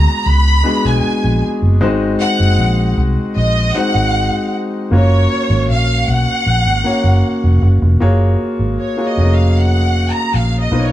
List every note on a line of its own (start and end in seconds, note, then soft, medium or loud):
0.00 0.64 G#3 medium
0.00 0.64 B3 medium
0.00 0.65 D4 medium
0.00 0.65 F#4 medium
0.00 1.83 B4 medium
0.00 0.27 A#5 loud
0.26 0.60 C#2 medium
0.26 0.85 B5 loud
0.64 1.58 G#3 medium
0.64 1.58 B3 medium
0.64 1.58 D4 medium
0.64 1.58 F#4 medium
0.64 1.59 G#4 medium
0.85 1.02 B1 medium
0.85 1.44 G#5 medium
1.24 1.41 A#1 medium
1.62 1.81 F#1 medium
1.81 2.15 G#1 loud
1.81 3.06 G#3 loud
1.81 3.06 C4 medium
1.81 3.06 D#4 medium
1.81 3.06 F#4 medium
1.81 3.06 C5 loud
2.20 2.93 F#5 loud
2.40 2.56 F#1 medium
2.59 2.93 A#1 loud
2.97 3.14 C2 medium
3.36 3.70 A#1 loud
3.36 3.72 D#5 medium
3.75 4.68 G#3 medium
3.75 4.68 C4 medium
3.75 4.68 D#4 medium
3.75 4.69 F#4 medium
3.75 4.69 C5 medium
3.75 4.52 F#5 loud
3.95 4.28 G#1 medium
4.91 5.25 F#1 loud
4.91 6.15 A#3 medium
4.91 6.16 C#4 medium
4.91 6.16 F4 medium
4.91 6.16 F#4 medium
4.91 6.16 C#5 medium
4.95 5.66 C#5 loud
5.50 5.69 G#1 medium
5.69 6.03 A#1 medium
5.69 6.08 F5 loud
6.08 6.24 B1 medium
6.08 7.62 F#5 loud
6.46 6.63 A#1 medium
6.65 6.82 G#1 medium
6.84 7.78 A#3 medium
6.84 7.78 C#4 medium
6.84 7.78 F#4 medium
6.84 7.79 C#5 medium
7.04 7.21 F#1 medium
7.44 7.60 F1 medium
7.62 7.79 F#1 medium
7.82 7.99 F1 medium
8.00 8.35 F#1 loud
8.00 8.78 A#3 medium
8.00 8.79 F4 medium
8.00 8.78 F#4 medium
8.00 8.79 G#4 medium
8.00 8.79 C#5 medium
8.59 8.76 G#1 medium
8.80 9.03 C#5 medium
8.97 9.13 A#3 medium
8.97 9.13 F4 medium
8.97 9.13 F#4 medium
8.97 9.13 G#4 medium
8.97 9.14 C#5 medium
9.06 9.31 D#5 medium
9.17 10.10 F1 medium
9.17 9.23 A3 medium
9.17 10.42 C#4 medium
9.17 10.42 F#4 medium
9.17 10.42 G#4 medium
9.17 10.43 D#5 medium
9.24 10.45 A#3 medium
9.33 9.57 F5 medium
9.59 10.09 F#5 medium
10.10 10.34 A#5 medium
10.34 10.68 A#1 medium
10.34 10.60 F5 medium
10.61 10.84 D#5 medium
10.71 10.92 B1 medium
10.71 10.92 B3 medium
10.71 10.92 D#4 medium
10.71 10.92 F4 medium
10.71 10.92 A#4 medium
10.71 10.79 C5 medium
10.79 10.92 C#5 medium
10.86 10.92 C#5 medium